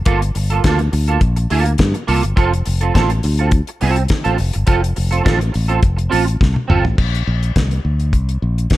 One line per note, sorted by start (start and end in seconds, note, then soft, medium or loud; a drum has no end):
0.05 0.30 G1 loud
0.05 0.21 A#3 medium
0.05 0.21 F4 medium
0.05 0.20 A4 medium
0.05 kick loud
0.05 closed hi-hat medium
0.21 muted clean electric guitar stroke soft
0.21 closed hi-hat medium
0.35 0.59 G1 medium
0.35 muted clean electric guitar stroke soft
0.35 open hi-hat medium
0.50 0.62 A#3 soft
0.50 0.62 F4 soft
0.50 0.61 A4 medium
0.50 closed hi-hat soft
0.64 0.88 D2 medium
0.64 0.79 A#3 medium
0.64 0.79 F4 medium
0.64 0.78 A4 medium
0.64 kick loud
0.64 snare loud
0.64 closed hi-hat medium
0.79 muted clean electric guitar stroke soft
0.79 closed hi-hat soft
0.92 1.17 D2 medium
0.92 muted clean electric guitar stroke soft
0.92 open hi-hat medium
1.07 1.20 A#3 soft
1.07 1.19 F4 medium
1.07 1.19 A4 medium
1.07 closed hi-hat soft
1.21 1.45 A#1 medium
1.21 kick loud
1.21 closed hi-hat medium
1.36 muted clean electric guitar stroke soft
1.36 closed hi-hat medium
1.50 1.75 D2 medium
1.50 1.71 A#3 medium
1.50 1.65 F4 loud
1.50 1.64 A4 medium
1.50 open hi-hat medium
1.65 muted clean electric guitar stroke medium
1.65 closed hi-hat soft
1.78 1.92 G2 loud
1.78 kick loud
1.78 snare loud
1.78 closed hi-hat medium
1.94 muted clean electric guitar stroke soft
1.94 closed hi-hat soft
2.07 2.21 C2 medium
2.07 2.23 A#3 medium
2.07 2.23 F4 medium
2.07 2.22 A4 medium
2.07 open hi-hat medium
2.23 2.35 G1 medium
2.23 muted clean electric guitar stroke soft
2.23 closed hi-hat soft
2.36 2.61 F1 loud
2.36 2.52 C4 medium
2.36 2.52 F4 medium
2.36 2.51 A4 medium
2.36 kick loud
2.36 closed hi-hat medium
2.52 muted clean electric guitar stroke soft
2.52 closed hi-hat soft
2.66 2.90 F1 loud
2.66 muted clean electric guitar stroke soft
2.66 open hi-hat medium
2.81 2.92 C4 medium
2.81 2.92 F4 medium
2.81 2.91 A4 medium
2.81 closed hi-hat soft
2.94 3.19 A1 loud
2.94 3.09 C4 medium
2.94 3.10 F4 medium
2.94 3.10 A4 loud
2.94 kick loud
2.94 snare loud
2.94 closed hi-hat medium
3.10 muted clean electric guitar stroke medium
3.10 closed hi-hat soft
3.23 3.60 D2 medium
3.23 muted clean electric guitar stroke soft
3.23 open hi-hat medium
3.38 3.50 C4 soft
3.38 3.50 F4 soft
3.38 3.49 A4 medium
3.38 closed hi-hat soft
3.51 kick loud
3.51 closed hi-hat medium
3.67 muted clean electric guitar stroke soft
3.67 closed hi-hat soft
3.81 4.05 C2 medium
3.81 4.02 C4 medium
3.81 3.97 F4 medium
3.81 3.96 A4 medium
3.81 open hi-hat medium
3.96 muted clean electric guitar stroke medium
3.96 closed hi-hat soft
4.08 muted clean electric guitar stroke soft
4.08 kick loud
4.08 snare loud
4.08 closed hi-hat medium
4.24 4.37 A1 medium
4.24 4.37 C4 medium
4.24 4.37 F4 medium
4.24 4.37 A4 medium
4.24 closed hi-hat soft
4.38 4.52 F1 loud
4.38 muted clean electric guitar stroke soft
4.38 open hi-hat medium
4.53 4.66 G1 medium
4.53 muted clean electric guitar stroke soft
4.53 closed hi-hat soft
4.67 4.91 F1 loud
4.67 4.82 C4 medium
4.67 4.81 F4 medium
4.67 4.80 A4 medium
4.67 kick loud
4.67 closed hi-hat medium
4.82 muted clean electric guitar stroke soft
4.82 closed hi-hat medium
4.96 5.21 F1 medium
4.96 muted clean electric guitar stroke soft
4.96 open hi-hat medium
5.11 5.22 C4 soft
5.11 5.22 F4 medium
5.11 5.21 A4 medium
5.11 closed hi-hat soft
5.24 5.49 A1 loud
5.24 5.39 C4 medium
5.24 5.39 F4 medium
5.24 5.38 A4 medium
5.24 kick loud
5.24 snare loud
5.24 closed hi-hat medium
5.39 muted clean electric guitar stroke soft
5.39 closed hi-hat soft
5.52 5.78 A1 loud
5.52 muted clean electric guitar stroke soft
5.52 open hi-hat medium
5.68 5.80 C4 medium
5.68 5.79 F4 medium
5.68 5.79 A4 medium
5.68 closed hi-hat soft
5.83 6.07 F1 medium
5.83 kick loud
5.83 closed hi-hat medium
5.97 muted clean electric guitar stroke soft
5.97 closed hi-hat medium
6.10 6.36 A1 medium
6.10 6.25 C4 medium
6.10 6.25 F4 medium
6.10 6.24 A4 loud
6.10 open hi-hat medium
6.25 muted clean electric guitar stroke soft
6.25 closed hi-hat soft
6.41 6.53 C2 loud
6.41 kick loud
6.41 snare medium
6.54 muted clean electric guitar stroke soft
6.54 high tom medium
6.68 6.82 G1 loud
6.68 6.83 C4 medium
6.68 6.84 F4 medium
6.68 6.84 A4 medium
6.68 mid tom medium
6.85 6.96 A1 medium
6.85 muted clean electric guitar stroke soft
6.85 floor tom medium
6.98 7.22 A#1 medium
6.98 kick loud
6.98 crash medium
7.15 closed hi-hat soft
7.27 7.51 A#1 loud
7.43 closed hi-hat soft
7.56 7.80 C2 medium
7.56 kick loud
7.56 snare loud
7.56 closed hi-hat medium
7.71 closed hi-hat soft
7.85 8.13 D2 medium
8.00 closed hi-hat soft
8.13 8.37 C2 medium
8.13 kick medium
8.13 closed hi-hat medium
8.29 closed hi-hat soft
8.42 8.66 A#1 medium
8.58 closed hi-hat soft
8.70 kick medium
8.70 snare medium
8.70 closed hi-hat medium